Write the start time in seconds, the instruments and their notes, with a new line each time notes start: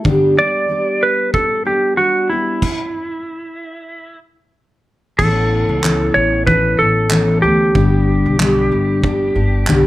0.04 steel-string acoustic guitar G2 D3 G3 B3 D4 G4, kick
0.35 steel-string acoustic guitar G3 B3 D4 G4, electric slide guitar D5
0.68 steel-string acoustic guitar G3 B3 D4 G4
1.03 electric slide guitar B4
1.34 electric slide guitar A4, kick
1.65 steel-string acoustic guitar G3 B3 D4 G4, electric slide guitar G4
1.97 steel-string acoustic guitar G3 B3 D4, electric slide guitar F#4
2.30 steel-string acoustic guitar G3 B3 D4 G4, electric slide guitar E4
2.62 kick, crash
5.18 upright bass A1, steel-string acoustic guitar A2 E3 B3 C#4 A4, electric slide guitar A4, kick, crash
5.69 upright bass C#2
5.82 steel-string acoustic guitar A2 E3 B3 C#4 A4, clap
6.14 upright bass A1, electric slide guitar C#5
6.46 steel-string acoustic guitar E3 B3 C#4 A4, electric slide guitar B4, kick
6.78 upright bass A1, steel-string acoustic guitar B3 C#4 A4, electric slide guitar A4
7.10 steel-string acoustic guitar A2 E3 B3 C#4 A4, clap
7.42 upright bass D2, steel-string acoustic guitar B3 C#4 A4, electric slide guitar G4
7.75 upright bass G1, steel-string acoustic guitar G2 D3 G3 B3 D4 G4, kick
8.26 upright bass B1
8.38 steel-string acoustic guitar G2 D3 G3 B3 D4 G4, clap
8.72 upright bass G1
9.02 steel-string acoustic guitar G3 B3 D4 G4, kick
9.35 upright bass G1, steel-string acoustic guitar G3 B3 D4 G4
9.67 upright bass B1, steel-string acoustic guitar G2 D3 G3 B3 D4 G4, clap